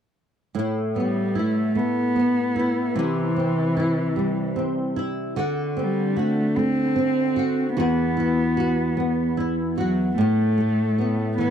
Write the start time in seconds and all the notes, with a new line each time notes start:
0.55 A2 E4
0.96 G3 B3
1.35 A3 E4
1.75 A3 B3
2.16 B3
2.56 E4
2.96 C3 E3 E4
3.36 C4
3.77 E4
4.16 G3
4.56 C4
4.96 E4
5.36 D3 F#4
5.77 G3 C4
6.16 A3 F#4
6.56 A3 C4
6.96 C4
7.36 F#4
7.77 E2 B3 F#4
8.17 E4
8.57 F#4
8.97 B3
9.37 E4
9.78 F#3 F#4
10.18 A2 A3
10.58 A3
10.98 B3
11.38 E3 B3